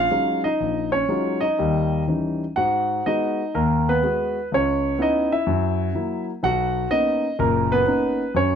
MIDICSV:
0, 0, Header, 1, 2, 480
1, 0, Start_track
1, 0, Key_signature, 5, "minor"
1, 0, Tempo, 491400
1, 577, Time_signature, 4, 2, 24, 8
1, 3465, Tempo, 480769
1, 8463, End_track
2, 0, Start_track
2, 0, Title_t, "Grand piano"
2, 0, Program_c, 0, 0
2, 0, Note_on_c, 0, 77, 104
2, 108, Note_on_c, 0, 56, 44
2, 110, Note_on_c, 0, 63, 46
2, 111, Note_on_c, 0, 54, 46
2, 111, Note_on_c, 0, 65, 52
2, 113, Note_on_c, 0, 61, 45
2, 394, Note_off_c, 0, 77, 0
2, 429, Note_off_c, 0, 63, 0
2, 430, Note_on_c, 0, 75, 85
2, 444, Note_off_c, 0, 56, 0
2, 444, Note_on_c, 0, 63, 68
2, 445, Note_off_c, 0, 54, 0
2, 445, Note_off_c, 0, 65, 0
2, 446, Note_off_c, 0, 61, 0
2, 585, Note_on_c, 0, 34, 57
2, 870, Note_off_c, 0, 75, 0
2, 877, Note_off_c, 0, 63, 0
2, 899, Note_on_c, 0, 73, 88
2, 919, Note_on_c, 0, 61, 58
2, 996, Note_off_c, 0, 34, 0
2, 1055, Note_off_c, 0, 61, 0
2, 1061, Note_on_c, 0, 54, 47
2, 1061, Note_on_c, 0, 56, 42
2, 1068, Note_on_c, 0, 63, 47
2, 1069, Note_on_c, 0, 61, 46
2, 1072, Note_on_c, 0, 65, 52
2, 1373, Note_on_c, 0, 75, 86
2, 1382, Note_off_c, 0, 63, 0
2, 1393, Note_off_c, 0, 73, 0
2, 1396, Note_on_c, 0, 63, 59
2, 1399, Note_off_c, 0, 54, 0
2, 1399, Note_off_c, 0, 56, 0
2, 1403, Note_off_c, 0, 61, 0
2, 1404, Note_off_c, 0, 65, 0
2, 1550, Note_on_c, 0, 39, 63
2, 1552, Note_on_c, 0, 55, 64
2, 1966, Note_off_c, 0, 39, 0
2, 1967, Note_off_c, 0, 55, 0
2, 1977, Note_off_c, 0, 75, 0
2, 1989, Note_off_c, 0, 63, 0
2, 2026, Note_on_c, 0, 52, 43
2, 2034, Note_on_c, 0, 55, 41
2, 2034, Note_on_c, 0, 61, 38
2, 2034, Note_on_c, 0, 63, 49
2, 2372, Note_off_c, 0, 52, 0
2, 2376, Note_off_c, 0, 55, 0
2, 2376, Note_off_c, 0, 61, 0
2, 2376, Note_off_c, 0, 63, 0
2, 2501, Note_on_c, 0, 78, 88
2, 2512, Note_on_c, 0, 44, 60
2, 2513, Note_on_c, 0, 66, 68
2, 2927, Note_off_c, 0, 44, 0
2, 2956, Note_off_c, 0, 66, 0
2, 2991, Note_on_c, 0, 75, 86
2, 2992, Note_on_c, 0, 56, 51
2, 2996, Note_on_c, 0, 59, 47
2, 2997, Note_on_c, 0, 63, 67
2, 2998, Note_off_c, 0, 78, 0
2, 3002, Note_on_c, 0, 66, 54
2, 3330, Note_off_c, 0, 56, 0
2, 3333, Note_off_c, 0, 59, 0
2, 3335, Note_off_c, 0, 66, 0
2, 3436, Note_off_c, 0, 63, 0
2, 3463, Note_on_c, 0, 39, 68
2, 3467, Note_on_c, 0, 70, 82
2, 3476, Note_on_c, 0, 58, 61
2, 3481, Note_off_c, 0, 75, 0
2, 3778, Note_off_c, 0, 58, 0
2, 3804, Note_on_c, 0, 59, 65
2, 3806, Note_off_c, 0, 70, 0
2, 3808, Note_on_c, 0, 71, 93
2, 3884, Note_off_c, 0, 39, 0
2, 3940, Note_off_c, 0, 59, 0
2, 3948, Note_on_c, 0, 56, 47
2, 3955, Note_on_c, 0, 59, 47
2, 3961, Note_on_c, 0, 66, 49
2, 4289, Note_off_c, 0, 56, 0
2, 4293, Note_off_c, 0, 59, 0
2, 4296, Note_off_c, 0, 66, 0
2, 4392, Note_off_c, 0, 71, 0
2, 4433, Note_on_c, 0, 37, 60
2, 4459, Note_on_c, 0, 73, 87
2, 4460, Note_on_c, 0, 61, 62
2, 4847, Note_off_c, 0, 37, 0
2, 4887, Note_off_c, 0, 61, 0
2, 4902, Note_on_c, 0, 59, 51
2, 4902, Note_on_c, 0, 61, 46
2, 4907, Note_on_c, 0, 64, 57
2, 4929, Note_on_c, 0, 63, 64
2, 4935, Note_off_c, 0, 73, 0
2, 4935, Note_on_c, 0, 75, 81
2, 5221, Note_off_c, 0, 63, 0
2, 5225, Note_off_c, 0, 75, 0
2, 5226, Note_off_c, 0, 64, 0
2, 5239, Note_on_c, 0, 76, 78
2, 5241, Note_on_c, 0, 64, 58
2, 5245, Note_off_c, 0, 59, 0
2, 5245, Note_off_c, 0, 61, 0
2, 5380, Note_on_c, 0, 42, 69
2, 5798, Note_off_c, 0, 42, 0
2, 5852, Note_off_c, 0, 64, 0
2, 5861, Note_on_c, 0, 54, 48
2, 5865, Note_on_c, 0, 58, 46
2, 5867, Note_on_c, 0, 64, 57
2, 6153, Note_off_c, 0, 76, 0
2, 6203, Note_off_c, 0, 54, 0
2, 6205, Note_off_c, 0, 58, 0
2, 6206, Note_off_c, 0, 64, 0
2, 6340, Note_on_c, 0, 35, 60
2, 6351, Note_on_c, 0, 78, 97
2, 6365, Note_on_c, 0, 66, 82
2, 6755, Note_off_c, 0, 35, 0
2, 6789, Note_off_c, 0, 78, 0
2, 6796, Note_off_c, 0, 66, 0
2, 6815, Note_on_c, 0, 58, 50
2, 6817, Note_on_c, 0, 59, 48
2, 6819, Note_on_c, 0, 61, 49
2, 6820, Note_on_c, 0, 75, 93
2, 6822, Note_on_c, 0, 63, 58
2, 7157, Note_off_c, 0, 58, 0
2, 7158, Note_off_c, 0, 59, 0
2, 7159, Note_off_c, 0, 61, 0
2, 7161, Note_off_c, 0, 63, 0
2, 7264, Note_off_c, 0, 75, 0
2, 7299, Note_on_c, 0, 46, 69
2, 7300, Note_on_c, 0, 30, 74
2, 7307, Note_on_c, 0, 70, 88
2, 7317, Note_on_c, 0, 58, 64
2, 7608, Note_off_c, 0, 70, 0
2, 7613, Note_off_c, 0, 58, 0
2, 7630, Note_on_c, 0, 71, 96
2, 7641, Note_on_c, 0, 59, 70
2, 7718, Note_off_c, 0, 30, 0
2, 7718, Note_off_c, 0, 46, 0
2, 7761, Note_off_c, 0, 59, 0
2, 7770, Note_on_c, 0, 58, 53
2, 7776, Note_on_c, 0, 59, 47
2, 7778, Note_on_c, 0, 61, 48
2, 7785, Note_on_c, 0, 63, 57
2, 8119, Note_off_c, 0, 58, 0
2, 8122, Note_off_c, 0, 59, 0
2, 8123, Note_off_c, 0, 61, 0
2, 8126, Note_off_c, 0, 63, 0
2, 8224, Note_off_c, 0, 71, 0
2, 8252, Note_on_c, 0, 42, 62
2, 8274, Note_on_c, 0, 73, 89
2, 8280, Note_on_c, 0, 61, 62
2, 8463, Note_off_c, 0, 42, 0
2, 8463, Note_off_c, 0, 61, 0
2, 8463, Note_off_c, 0, 73, 0
2, 8463, End_track
0, 0, End_of_file